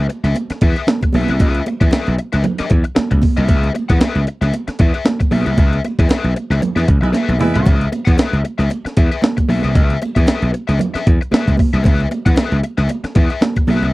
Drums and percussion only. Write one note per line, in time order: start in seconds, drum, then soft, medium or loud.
0.10 closed hi-hat medium
0.10 muted conga soft
0.24 snare soft
0.24 closed hi-hat soft
0.35 closed hi-hat medium
0.35 muted conga medium
0.50 snare soft
0.50 closed hi-hat medium
0.61 kick loud
0.61 closed hi-hat medium
0.76 closed hi-hat soft
0.87 snare loud
0.87 closed hi-hat medium
0.87 high conga medium
1.01 kick medium
1.01 closed hi-hat medium
1.01 high conga medium
1.13 open hi-hat medium
1.13 high conga medium
1.28 closed hi-hat soft
1.40 kick loud
1.40 closed hi-hat medium
1.40 muted conga medium
1.55 closed hi-hat soft
1.66 closed hi-hat medium
1.66 muted conga medium
1.81 kick loud
1.81 closed hi-hat medium
1.91 snare loud
1.91 closed hi-hat loud
1.91 high conga medium
2.07 closed hi-hat soft
2.19 closed hi-hat medium
2.19 muted conga soft
2.33 snare soft
2.33 closed hi-hat medium
2.44 closed hi-hat medium
2.44 muted conga medium
2.44 low conga medium
2.58 snare soft
2.58 closed hi-hat medium
2.70 kick loud
2.70 closed hi-hat medium
2.84 closed hi-hat soft
2.96 snare loud
2.96 closed hi-hat medium
2.96 high conga medium
3.11 kick medium
3.11 closed hi-hat medium
3.11 high conga medium
3.22 kick medium
3.22 open hi-hat medium
3.22 high conga medium
3.37 closed hi-hat soft
3.48 kick loud
3.48 closed hi-hat medium
3.48 muted conga medium
3.64 closed hi-hat soft
3.75 closed hi-hat medium
3.75 muted conga medium
3.90 kick loud
3.90 closed hi-hat medium
4.00 snare loud
4.00 closed hi-hat loud
4.00 high conga medium
4.15 closed hi-hat soft
4.27 closed hi-hat medium
4.42 snare soft
4.42 closed hi-hat medium
4.54 closed hi-hat medium
4.54 muted conga medium
4.68 snare soft
4.68 closed hi-hat medium
4.79 kick loud
4.79 closed hi-hat medium
4.94 closed hi-hat soft
5.05 snare loud
5.05 closed hi-hat medium
5.05 high conga medium
5.20 kick medium
5.20 closed hi-hat medium
5.20 high conga medium
5.31 open hi-hat medium
5.31 high conga medium
5.46 closed hi-hat soft
5.57 kick loud
5.57 closed hi-hat medium
5.57 muted conga medium
5.73 closed hi-hat soft
5.84 closed hi-hat medium
5.84 muted conga medium
5.99 kick loud
5.99 closed hi-hat medium
6.09 snare loud
6.09 closed hi-hat loud
6.09 high conga medium
6.24 closed hi-hat soft
6.36 closed hi-hat medium
6.36 muted conga soft
6.51 snare soft
6.51 closed hi-hat medium
6.62 closed hi-hat medium
6.62 muted conga medium
6.62 low conga medium
6.77 snare soft
6.77 closed hi-hat medium
6.88 kick loud
6.88 closed hi-hat medium
7.03 closed hi-hat soft
7.13 snare medium
7.13 closed hi-hat medium
7.13 high conga medium
7.28 closed hi-hat medium
7.28 high conga medium
7.39 mid tom medium
7.39 open hi-hat medium
7.39 high conga medium
7.55 closed hi-hat soft
7.55 floor tom medium
7.66 kick loud
7.66 closed hi-hat medium
7.66 muted conga medium
7.81 closed hi-hat soft
7.92 closed hi-hat medium
7.92 muted conga medium
8.07 kick loud
8.07 closed hi-hat medium
8.18 snare loud
8.18 closed hi-hat loud
8.18 high conga medium
8.33 closed hi-hat medium
8.45 closed hi-hat medium
8.45 muted conga soft
8.60 snare soft
8.60 closed hi-hat medium
8.70 closed hi-hat medium
8.70 muted conga medium
8.86 snare soft
8.86 closed hi-hat medium
8.97 kick loud
8.97 closed hi-hat medium
9.12 closed hi-hat soft
9.22 snare loud
9.22 closed hi-hat medium
9.22 high conga medium
9.37 kick medium
9.37 closed hi-hat medium
9.37 high conga medium
9.49 open hi-hat medium
9.49 high conga medium
9.64 closed hi-hat soft
9.75 kick loud
9.75 closed hi-hat medium
9.75 muted conga medium
9.90 closed hi-hat soft
10.02 closed hi-hat medium
10.02 muted conga medium
10.16 kick medium
10.16 closed hi-hat medium
10.27 snare loud
10.27 closed hi-hat loud
10.27 high conga medium
10.42 closed hi-hat medium
10.54 closed hi-hat medium
10.54 muted conga soft
10.69 snare soft
10.69 closed hi-hat medium
10.79 closed hi-hat medium
10.79 muted conga medium
10.79 low conga medium
10.95 snare soft
10.95 closed hi-hat medium
11.07 kick loud
11.07 closed hi-hat medium
11.22 closed hi-hat soft
11.32 snare loud
11.32 closed hi-hat medium
11.32 high conga medium
11.46 kick medium
11.46 closed hi-hat medium
11.46 high conga medium
11.57 kick medium
11.57 open hi-hat medium
11.57 high conga medium
11.74 closed hi-hat soft
11.84 kick loud
11.84 closed hi-hat medium
11.84 muted conga medium
12.00 closed hi-hat soft
12.11 closed hi-hat medium
12.11 muted conga medium
12.26 kick loud
12.26 closed hi-hat medium
12.36 snare loud
12.36 closed hi-hat loud
12.36 high conga medium
12.52 closed hi-hat soft
12.64 closed hi-hat medium
12.64 muted conga soft
12.78 snare soft
12.78 closed hi-hat medium
12.89 closed hi-hat medium
12.89 muted conga medium
13.04 snare soft
13.04 closed hi-hat medium
13.15 kick loud
13.15 closed hi-hat medium
13.30 closed hi-hat soft
13.41 snare loud
13.41 closed hi-hat medium
13.41 high conga medium
13.56 kick loud
13.56 closed hi-hat medium
13.56 high conga medium
13.67 open hi-hat medium
13.67 high conga medium
13.82 closed hi-hat soft